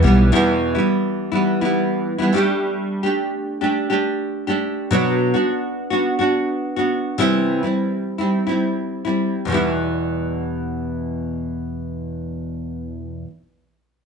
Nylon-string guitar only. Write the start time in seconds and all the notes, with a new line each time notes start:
0.03 E3 G3 B3 E4
0.32 E2 B2 E3 G3 B3 E4
0.75 E3 G3 B3 E4
1.32 E3 G3 B3 E4
1.61 E3 G3 B3 E4
2.18 E3 G3 B3 E4
2.32 G3 A3 D4 G4
3.03 A3 D4 G4
3.61 A3 D4 G4
3.90 A3 D4 G4
4.47 A3 D4 G4
4.91 B2 F#3 B3 D4 F#4
5.34 B3 D4 F#4
5.90 B3 D4 F#4
6.19 B3 D4 F#4
6.76 B3 D4 F#4
7.18 C3 E3 G3 C4 E4
7.63 G3 C4 E4
8.18 G3 C4 E4
8.47 G3 C4 E4
9.05 G3 C4 E4
9.45 E2 B2
9.49 E3 G3 B3
9.54 E4